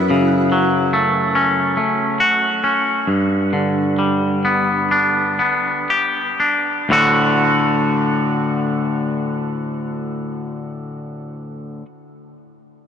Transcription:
0, 0, Header, 1, 2, 480
1, 0, Start_track
1, 0, Key_signature, 2, "major"
1, 0, Tempo, 837989
1, 773, Tempo, 865801
1, 1733, Time_signature, 4, 2, 24, 8
1, 1733, Tempo, 917431
1, 2693, Tempo, 991736
1, 3653, Tempo, 1038062
1, 6414, End_track
2, 0, Start_track
2, 0, Title_t, "Clean electric guitar"
2, 0, Program_c, 0, 27
2, 0, Note_on_c, 0, 42, 46
2, 59, Note_on_c, 0, 49, 44
2, 298, Note_on_c, 0, 54, 38
2, 534, Note_on_c, 0, 57, 40
2, 774, Note_on_c, 0, 61, 46
2, 1000, Note_off_c, 0, 57, 0
2, 1007, Note_on_c, 0, 57, 32
2, 1012, Note_off_c, 0, 42, 0
2, 1245, Note_on_c, 0, 66, 41
2, 1251, Note_off_c, 0, 49, 0
2, 1480, Note_off_c, 0, 61, 0
2, 1487, Note_on_c, 0, 61, 39
2, 1492, Note_off_c, 0, 54, 0
2, 1730, Note_on_c, 0, 43, 45
2, 1732, Note_off_c, 0, 57, 0
2, 1732, Note_off_c, 0, 61, 0
2, 1732, Note_off_c, 0, 66, 0
2, 1968, Note_on_c, 0, 50, 36
2, 2207, Note_on_c, 0, 55, 33
2, 2448, Note_on_c, 0, 59, 35
2, 2691, Note_on_c, 0, 62, 38
2, 2917, Note_off_c, 0, 59, 0
2, 2923, Note_on_c, 0, 59, 35
2, 2924, Note_off_c, 0, 43, 0
2, 3162, Note_off_c, 0, 50, 0
2, 3170, Note_on_c, 0, 67, 43
2, 3404, Note_off_c, 0, 62, 0
2, 3405, Note_off_c, 0, 55, 0
2, 3410, Note_on_c, 0, 62, 36
2, 3648, Note_on_c, 0, 38, 52
2, 3652, Note_off_c, 0, 59, 0
2, 3654, Note_on_c, 0, 45, 56
2, 3655, Note_off_c, 0, 62, 0
2, 3656, Note_off_c, 0, 67, 0
2, 3658, Note_on_c, 0, 50, 51
2, 3663, Note_on_c, 0, 57, 54
2, 3666, Note_on_c, 0, 66, 59
2, 5927, Note_off_c, 0, 38, 0
2, 5932, Note_off_c, 0, 45, 0
2, 5936, Note_off_c, 0, 50, 0
2, 5942, Note_off_c, 0, 57, 0
2, 5944, Note_off_c, 0, 66, 0
2, 6414, End_track
0, 0, End_of_file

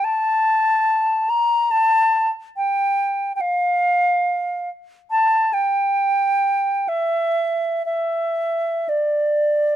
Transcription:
0, 0, Header, 1, 2, 480
1, 0, Start_track
1, 0, Tempo, 500000
1, 9369, End_track
2, 0, Start_track
2, 0, Title_t, "Flute"
2, 0, Program_c, 0, 73
2, 41, Note_on_c, 0, 81, 93
2, 1243, Note_on_c, 0, 82, 90
2, 1257, Note_off_c, 0, 81, 0
2, 1642, Note_on_c, 0, 81, 88
2, 1656, Note_off_c, 0, 82, 0
2, 2203, Note_off_c, 0, 81, 0
2, 2465, Note_on_c, 0, 79, 77
2, 3194, Note_off_c, 0, 79, 0
2, 3223, Note_on_c, 0, 79, 50
2, 3271, Note_on_c, 0, 77, 72
2, 3285, Note_off_c, 0, 79, 0
2, 4505, Note_off_c, 0, 77, 0
2, 4903, Note_on_c, 0, 81, 83
2, 5313, Note_on_c, 0, 79, 79
2, 5327, Note_off_c, 0, 81, 0
2, 6609, Note_on_c, 0, 76, 74
2, 6624, Note_off_c, 0, 79, 0
2, 7536, Note_off_c, 0, 76, 0
2, 7542, Note_on_c, 0, 76, 67
2, 8532, Note_on_c, 0, 74, 56
2, 8547, Note_off_c, 0, 76, 0
2, 9369, Note_off_c, 0, 74, 0
2, 9369, End_track
0, 0, End_of_file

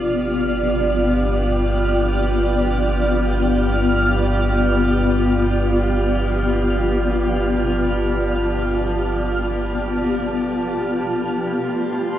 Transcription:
0, 0, Header, 1, 4, 480
1, 0, Start_track
1, 0, Tempo, 500000
1, 11699, End_track
2, 0, Start_track
2, 0, Title_t, "Synth texture"
2, 0, Program_c, 0, 99
2, 0, Note_on_c, 0, 89, 72
2, 10783, Note_on_c, 0, 84, 64
2, 10789, Note_off_c, 0, 89, 0
2, 11699, Note_off_c, 0, 84, 0
2, 11699, End_track
3, 0, Start_track
3, 0, Title_t, "Ambient pad"
3, 0, Program_c, 1, 92
3, 0, Note_on_c, 1, 59, 79
3, 0, Note_on_c, 1, 65, 62
3, 0, Note_on_c, 1, 67, 78
3, 0, Note_on_c, 1, 74, 81
3, 0, Note_on_c, 1, 79, 67
3, 6444, Note_on_c, 1, 81, 68
3, 6648, Note_off_c, 1, 79, 0
3, 10766, Note_off_c, 1, 59, 0
3, 10767, Note_on_c, 1, 57, 76
3, 10774, Note_off_c, 1, 65, 0
3, 11221, Note_on_c, 1, 64, 70
3, 11699, Note_off_c, 1, 57, 0
3, 11699, Note_off_c, 1, 64, 0
3, 11699, Note_off_c, 1, 67, 0
3, 11699, Note_off_c, 1, 74, 0
3, 11699, Note_off_c, 1, 81, 0
3, 11699, End_track
4, 0, Start_track
4, 0, Title_t, "Synth drone"
4, 0, Program_c, 2, 95
4, 0, Note_on_c, 2, 31, 85
4, 10732, Note_off_c, 2, 31, 0
4, 11699, End_track
0, 0, End_of_file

